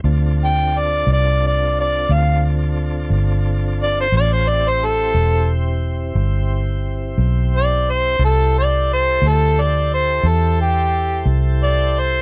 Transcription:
0.04 1.03 D2 medium
0.04 4.08 C4 medium
0.04 4.08 D4 medium
0.04 4.08 F4 medium
0.04 4.09 A4 medium
0.45 0.80 G5 medium
0.78 1.08 D5 medium
1.07 2.05 C2 medium
1.13 1.43 D5 medium
1.47 1.77 D5 medium
1.80 2.14 D5 medium
2.09 3.08 D2 medium
2.09 2.43 F5 medium
3.10 4.09 G1 medium
3.83 3.96 D5 medium
4.01 4.14 C5 medium
4.12 5.11 A1 medium
4.12 4.47 C#4 medium
4.12 4.47 F4 medium
4.12 4.47 G#4 medium
4.12 4.46 C5 medium
4.17 4.34 D5 medium
4.33 4.50 C5 medium
4.47 8.17 C4 medium
4.47 8.17 E4 medium
4.47 8.16 G4 medium
4.47 8.16 C5 medium
4.47 4.70 D5 medium
4.68 4.86 C5 medium
4.85 5.48 A4 medium
5.14 6.13 E1 medium
6.15 7.14 G1 medium
7.18 8.17 B1 medium
7.56 7.92 D5 medium
7.90 8.21 C5 medium
8.19 9.18 C2 medium
8.19 12.22 E4 medium
8.19 12.22 G4 medium
8.19 12.22 A4 medium
8.19 12.22 C5 medium
8.25 8.55 A4 medium
8.58 8.89 D5 medium
8.93 9.29 C5 medium
9.22 10.20 D2 medium
9.27 9.63 A4 medium
9.61 9.91 D5 medium
9.94 10.29 C5 medium
10.23 11.22 E2 medium
10.28 10.58 A4 medium
10.62 11.25 G4 medium
11.26 12.22 C2 medium
11.63 12.01 D5 medium
11.99 12.22 C5 medium

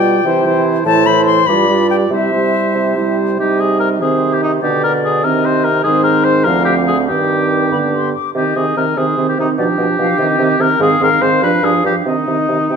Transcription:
0.00 0.18 B2 medium
0.00 0.24 G3 soft
0.00 0.25 F4 soft
0.00 0.25 D5 soft
0.00 0.63 G5 medium
0.24 0.79 C3 medium
0.24 0.44 E3 soft
0.24 0.45 E4 soft
0.24 0.45 C5 soft
0.45 0.85 E3 medium
0.45 0.85 E4 medium
0.45 0.85 C5 medium
0.86 1.40 A2 medium
0.86 1.06 E3 soft
0.86 1.06 E4 soft
0.86 1.06 C5 soft
0.86 1.08 A5 medium
1.06 1.47 E3 medium
1.06 1.48 E4 medium
1.06 1.47 C5 medium
1.06 1.25 B5 medium
1.26 1.48 C6 medium
1.47 2.03 G2 medium
1.47 1.68 G3 soft
1.47 1.68 F4 soft
1.47 1.69 D5 soft
1.47 1.89 B5 medium
1.69 2.10 G3 soft
1.69 2.10 F4 soft
1.69 2.10 D5 soft
1.90 1.96 G5 medium
2.10 2.58 C3 medium
2.10 2.32 G3 soft
2.10 2.32 E4 soft
2.10 2.32 C5 soft
2.10 3.15 E5 medium
2.32 2.95 G3 soft
2.32 2.95 E4 soft
2.32 2.95 C5 soft
2.75 3.31 C3 medium
2.96 3.38 G3 soft
2.96 3.38 E4 soft
2.96 3.38 C5 soft
3.38 4.59 C3 soft
3.38 4.03 G3 soft
3.38 3.98 D#4 soft
3.38 3.61 G4 medium
3.38 4.03 D#5 soft
3.60 3.79 G#4 medium
3.79 3.89 A#4 medium
4.01 4.62 D#3 soft
4.01 4.62 C4 soft
4.01 4.34 G#4 soft
4.01 4.64 C5 soft
4.33 4.42 G4 soft
4.43 4.52 D#4 soft
4.62 5.25 B2 soft
4.62 5.25 D3 soft
4.62 5.23 D4 soft
4.62 4.83 G4 medium
4.62 5.26 D5 soft
4.83 4.93 A#4 medium
5.04 5.26 G#4 medium
5.24 5.85 C3 medium
5.24 5.84 D#3 soft
5.24 5.69 C4 soft
5.24 5.47 A#4 medium
5.24 5.83 D#5 medium
5.45 5.66 C5 medium
5.64 5.83 A#4 medium
5.83 6.48 G#2 medium
5.83 6.48 D#3 soft
5.83 6.43 C4 soft
5.83 6.03 G#4 medium
5.83 6.48 C5 medium
6.03 6.25 A#4 medium
6.24 6.45 C5 medium
6.44 7.11 D2 soft
6.44 6.92 F3 soft
6.44 7.08 C4 soft
6.44 6.64 A#4 medium
6.44 7.08 F5 medium
6.65 6.75 G4 medium
6.87 6.97 G#4 medium
7.08 7.71 G2 soft
7.08 7.74 D#3 soft
7.08 7.75 C4 soft
7.08 8.11 G4 medium
7.08 7.67 G5 soft
7.71 8.13 G2 soft
7.71 8.14 D3 soft
7.71 8.15 B3 soft
7.71 7.77 B5 soft
7.95 8.13 C6 soft
8.14 8.34 D6 soft
8.34 8.44 C3 soft
8.34 8.56 D#3 soft
8.34 8.55 C4 soft
8.34 8.58 G4 soft
8.34 8.99 D#5 soft
8.56 8.65 C3 soft
8.56 8.76 D#3 soft
8.56 8.76 C4 soft
8.56 8.76 G#4 soft
8.77 8.86 C3 soft
8.77 8.97 D#3 soft
8.77 8.97 C4 soft
8.77 8.99 A#4 medium
8.97 9.06 C3 soft
8.97 9.17 D#3 soft
8.97 9.18 C4 soft
8.97 9.28 G#4 soft
8.97 9.57 C5 soft
9.18 9.27 C3 soft
9.18 9.38 D#3 soft
9.18 9.38 C4 soft
9.29 9.38 G4 soft
9.38 9.48 C3 soft
9.38 9.58 D#3 soft
9.38 9.58 C4 soft
9.38 9.49 D#4 soft
9.58 9.67 B2 soft
9.58 9.78 F3 soft
9.58 9.78 D4 soft
9.58 10.62 G4 medium
9.58 9.64 D5 soft
9.78 9.87 B2 soft
9.78 9.98 F3 soft
9.78 9.99 D4 soft
9.78 9.84 D#5 soft
9.99 10.08 B2 soft
9.99 10.18 F3 soft
9.99 10.19 D4 soft
9.99 10.20 F5 medium
10.18 10.28 C3 soft
10.18 10.39 D#3 soft
10.18 10.40 C4 soft
10.18 10.56 D#5 medium
10.39 10.48 C3 medium
10.39 10.58 D#3 soft
10.39 10.60 C4 soft
10.59 10.69 C3 soft
10.59 10.79 D#3 soft
10.59 10.80 C4 soft
10.59 10.81 A#4 medium
10.79 10.89 G#2 medium
10.79 10.99 D#3 soft
10.79 11.00 C4 soft
10.79 11.01 G#4 medium
10.79 12.03 F5 medium
11.00 11.10 G#2 medium
11.00 11.20 D#3 soft
11.00 11.21 C4 soft
11.00 11.23 A#4 medium
11.21 11.31 G#2 soft
11.21 11.42 D#3 soft
11.21 11.42 C4 soft
11.21 11.43 C5 medium
11.42 11.51 G2 medium
11.42 11.63 F3 soft
11.42 11.63 D4 soft
11.42 11.66 B4 medium
11.63 11.72 G2 soft
11.63 11.84 F3 soft
11.63 11.84 D4 soft
11.63 11.85 G#4 medium
11.84 11.94 G2 soft
11.84 12.05 F3 soft
11.84 12.06 D4 soft
11.84 11.95 G4 medium
12.05 12.15 C3 soft
12.05 12.27 D#3 soft
12.05 12.27 C4 soft
12.05 12.76 D#4 soft
12.05 12.65 D#5 soft
12.27 12.37 C3 soft
12.27 12.48 D#3 soft
12.27 12.48 C4 soft
12.49 12.58 C3 soft
12.49 12.70 D#3 soft
12.49 12.70 C4 soft
12.69 12.76 C3 soft
12.69 12.76 D#3 soft
12.69 12.76 C4 soft
12.69 12.76 G5 soft

